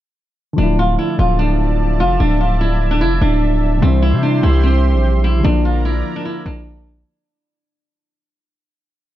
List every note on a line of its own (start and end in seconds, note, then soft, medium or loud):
0.53 3.76 D3 medium
0.53 3.77 F3 medium
0.58 0.97 D1 loud
0.58 3.79 F3 medium
0.58 3.79 A3 medium
0.58 0.77 D4 medium
0.58 3.79 D5 medium
0.58 5.40 E5 medium
0.58 3.79 A5 medium
0.63 3.81 E4 medium
0.79 0.98 F4 medium
0.99 1.17 E4 medium
1.19 2.01 D1 loud
1.19 1.38 F4 medium
1.39 1.96 D4 medium
2.00 2.19 F1 loud
2.00 2.19 F4 medium
2.20 3.03 D1 loud
2.20 2.39 D4 loud
2.41 2.59 F4 medium
2.61 2.89 E4 medium
2.91 3.00 D4 medium
3.01 3.20 F1 loud
3.01 3.20 E4 medium
3.21 3.80 D1 loud
3.21 3.79 D4 medium
3.78 5.39 C3 medium
3.78 5.40 E3 medium
3.82 4.14 C2 loud
3.82 5.42 G3 medium
3.82 4.01 C4 medium
3.82 5.43 G4 medium
3.82 5.43 C5 medium
3.82 5.43 C6 loud
3.87 5.44 E4 medium
4.02 4.21 E4 medium
4.13 4.42 C3 loud
4.23 4.42 D4 medium
4.43 4.95 C2 loud
4.43 4.62 E4 medium
4.63 5.20 C4 medium
4.94 5.42 A#1 loud
5.24 5.43 E4 medium
5.40 7.01 D3 medium
5.40 7.03 F3 medium
5.44 6.03 A#1 loud
5.44 7.05 F3 medium
5.44 7.04 A#3 medium
5.44 5.63 D4 loud
5.44 7.05 A#4 medium
5.44 7.05 D5 medium
5.44 7.05 A#5 loud
5.50 7.06 D4 medium
5.65 5.84 F4 medium
5.85 6.14 E4 medium
6.16 6.25 D4 medium
6.25 6.44 E4 medium
6.46 7.04 A#1 loud
6.46 7.03 D4 medium